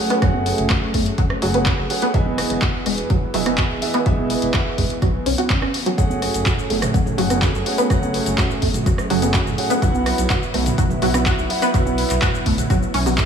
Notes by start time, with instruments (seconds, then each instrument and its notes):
Already playing: analog synth pad F#3 A3 C#4 G#4
0.00 grand piano A3 F#4 G#4 C#5 F#5
0.10 synth pluck B3, closed hi-hat
0.22 detuned saw bass F#1, synth pluck F#3, grand piano A3 F#4 G#4 C#5 F#5, kick, cross-stick, closed hi-hat
0.34 high conga
0.46 open hi-hat
0.58 detuned saw bass F#1, closed hi-hat
0.70 synth pluck F#4, kick, cross-stick, clap, closed hi-hat
0.94 detuned saw bass F#1, synth pluck A3, kick, open hi-hat, high conga
1.06 closed hi-hat
1.18 detuned saw bass F#1, synth pluck F#3, kick, closed hi-hat
1.30 cross-stick
1.42 detuned saw bass F#1, synth pluck F#3, grand piano A3 F#4 G#4 C#5 F#5, open hi-hat
1.54 synth pluck B3, closed hi-hat, high conga
1.66 synth pluck F#4, kick, clap, closed hi-hat
1.78 detuned saw bass F#1, cross-stick
1.90 grand piano A3 F#4 G#4 C#5 F#5, open hi-hat
2.02 synth pluck B3, closed hi-hat
2.14 detuned saw bass E1, analog synth pad E3 B3, synth pluck F#3, grand piano B3 E4 G#4 D#5 E5, kick, closed hi-hat
2.26 high conga
2.38 cross-stick, open hi-hat
2.50 detuned saw bass E1, closed hi-hat
2.62 synth pluck F#4, kick, clap, closed hi-hat
2.86 detuned saw bass E1, synth pluck G#3, cross-stick, open hi-hat, high conga
2.98 closed hi-hat
3.10 detuned saw bass E1, synth pluck F#3, kick, closed hi-hat
3.34 detuned saw bass E1, synth pluck F#3, grand piano B3 E4 G#4 D#5 E5, open hi-hat
3.46 synth pluck B3, cross-stick, closed hi-hat, high conga
3.58 synth pluck F#4, kick, clap, closed hi-hat
3.70 detuned saw bass E1
3.82 grand piano B3 E4 G#4 D#5 E5, open hi-hat
3.94 synth pluck B3, cross-stick, closed hi-hat
4.06 detuned saw bass E1, synth pluck F#3, grand piano B3 E4 G#4 D#5 E5, kick, closed hi-hat
4.18 high conga
4.30 open hi-hat
4.42 detuned saw bass E1, closed hi-hat
4.54 synth pluck F#4, kick, cross-stick, clap, closed hi-hat
4.78 detuned saw bass E1, synth pluck G#3, kick, open hi-hat, high conga
4.90 closed hi-hat
5.02 detuned saw bass B1, synth pluck F#3, kick, cross-stick, closed hi-hat
5.26 detuned saw bass B1, synth pluck C#4, open hi-hat
5.38 synth pluck F#4, closed hi-hat, high conga
5.50 synth pluck C#4, kick, clap, closed hi-hat
5.62 detuned saw bass E1, synth pluck C#4, cross-stick
5.74 open hi-hat
5.86 synth pluck F#3, closed hi-hat
5.98 detuned saw bass F#1, synth pluck F#3, analog synth pad F#3 A3 C#4 G#4, grand piano A3 F#4 G#4 C#5 F#5, kick, closed hi-hat, shaker
6.10 high conga, shaker
6.22 cross-stick, open hi-hat
6.34 detuned saw bass F#1, closed hi-hat, shaker
6.46 synth pluck F#4, kick, clap, closed hi-hat, mid tom, shaker
6.59 shaker
6.70 detuned saw bass F#1, synth pluck A3, open hi-hat, high conga
6.82 cross-stick, closed hi-hat, mid tom, shaker
6.94 detuned saw bass F#1, synth pluck F#3, kick, closed hi-hat, shaker
7.06 mid tom, shaker
7.18 detuned saw bass F#1, synth pluck F#3, grand piano A3 F#4 G#4 C#5 F#5, open hi-hat
7.30 synth pluck B3, cross-stick, closed hi-hat, high conga, shaker
7.42 synth pluck F#4, kick, clap, closed hi-hat, shaker
7.54 detuned saw bass F#1, shaker
7.66 grand piano A3 F#4 G#4 C#5 F#5, open hi-hat
7.78 synth pluck B3, closed hi-hat, shaker
7.90 detuned saw bass F#1, synth pluck F#3, grand piano A3 F#4 G#4 C#5 F#5, kick, cross-stick, closed hi-hat, shaker
8.02 high conga, shaker
8.14 open hi-hat
8.26 detuned saw bass F#1, closed hi-hat, shaker
8.38 synth pluck F#4, kick, cross-stick, clap, closed hi-hat, mid tom, shaker
8.51 shaker
8.62 detuned saw bass F#1, synth pluck A3, kick, open hi-hat, high conga
8.74 closed hi-hat, mid tom, shaker
8.86 detuned saw bass F#1, synth pluck F#3, kick, closed hi-hat, shaker
8.98 cross-stick, shaker
9.10 detuned saw bass F#1, synth pluck F#3, grand piano A3 F#4 G#4 C#5 F#5, open hi-hat
9.22 synth pluck B3, closed hi-hat, high conga, shaker
9.34 synth pluck F#4, kick, clap, closed hi-hat, shaker
9.46 detuned saw bass F#1, cross-stick, mid tom, shaker
9.58 grand piano A3 F#4 G#4 C#5 F#5, open hi-hat
9.70 synth pluck B3, closed hi-hat, shaker
9.82 detuned saw bass B1, synth pluck F#3, analog synth pad F#3 B3 E4, grand piano B3 E4 F#4 E5 F#5, kick, closed hi-hat, shaker
9.94 high conga, shaker
10.06 cross-stick, open hi-hat
10.18 detuned saw bass B1, closed hi-hat, shaker
10.30 synth pluck F#4, kick, clap, closed hi-hat, mid tom, shaker
10.43 shaker
10.54 detuned saw bass B1, synth pluck A3, cross-stick, open hi-hat, high conga
10.66 closed hi-hat, mid tom, shaker
10.78 detuned saw bass B1, synth pluck F#3, kick, closed hi-hat, shaker
10.90 mid tom, shaker
11.02 detuned saw bass B1, synth pluck F#3, grand piano B3 E4 F#4 E5 F#5, open hi-hat
11.14 synth pluck B3, cross-stick, closed hi-hat, high conga, shaker
11.26 synth pluck F#4, kick, clap, closed hi-hat, shaker
11.38 detuned saw bass B1, shaker
11.50 grand piano B3 E4 F#4 E5 F#5, open hi-hat
11.62 synth pluck B3, cross-stick, closed hi-hat, shaker
11.74 detuned saw bass B1, synth pluck F#3, grand piano B3 E4 F#4 E5 F#5, kick, closed hi-hat, shaker
11.86 high conga, shaker
11.98 open hi-hat
12.10 detuned saw bass B1, clap, closed hi-hat, shaker
12.22 synth pluck F#4, kick, cross-stick, clap, closed hi-hat, mid tom, shaker
12.35 shaker
12.46 detuned saw bass B1, synth pluck A3, kick, open hi-hat, high conga
12.58 closed hi-hat, mid tom, shaker
12.70 detuned saw bass B1, synth pluck F#3, kick, cross-stick, closed hi-hat, shaker
12.83 shaker
12.94 detuned saw bass B1, synth pluck C#4, open hi-hat
13.06 synth pluck F#3, open hi-hat, high conga, shaker
13.18 synth pluck A3, kick, clap, closed hi-hat, shaker